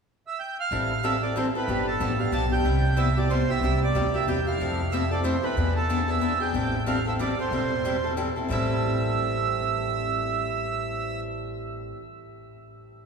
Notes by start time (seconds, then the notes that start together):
0.27 E5
0.40 G5
0.60 F5
0.71 A1 E3 G3 C4 E4 A4
1.03 E3 G3 C4 E4 A4 E5
1.23 C4 E4 A4 D5
1.36 E3 G3 C4 E4 A4 C5
1.55 C4 E4 A4 B4
1.68 G1 D3 F3 B3 D4 G4
1.87 A4
2.00 A1 D3 F3 B3 D4 G4
2.19 B3 D4 G4 F5
2.32 B1 D3 F3 B3 D4 G4 A5
2.52 B3 D4 G4 G5
2.64 C2 C3 G3 B3 E4 G4
2.97 C3 G3 B3 E4 G4 E5
3.17 B3 E4 G4 D5
3.30 C3 G3 B3 E4 G4 C5
3.49 B3 E4 G4 E5
3.60 C2 C3 G3 A#3 E4
3.65 G4
3.83 D5
3.94 D2 C3 G3 A#3 E4 G4
4.14 A#3 E4 G4 E5
4.26 E2 C3 G3 A#3 E4 G4 G5
4.47 A#3 E4 G4 F5
4.58 F2 F3 A3 C4 E4 A4
4.92 F3 A3 C4 E4 A4 E5
5.11 C4 E4 A4 D5
5.24 F3 A3 C4 E4 A4 C5
5.43 C4 E4 A4 B4
5.56 E2 E3 B3 D4 G#4
5.76 A4
5.89 E3 B3 D4 G#4
6.08 B3 D4 G#4 E5
6.21 E3 B3 D4 G#4
6.40 B3 D4 G#4 G5
6.53 A1 E3 G3 C4 E4 A4
6.86 E3 G3 C4 E4 A4 F5
7.06 C4 E4 A4 E5
7.19 E3 G3 C4 E4 A4 D5
7.39 C4 E4 A4 C5
7.51 E1 E3 G3 C4 E4 A4
7.85 E3 G3 C4 E4 A4
8.04 C4 E4 A4
8.17 E3 G3 C4 E4 A4
8.36 C4 E4 A4
8.48 A1 A2 E3 G3 C4 E4 A4 E5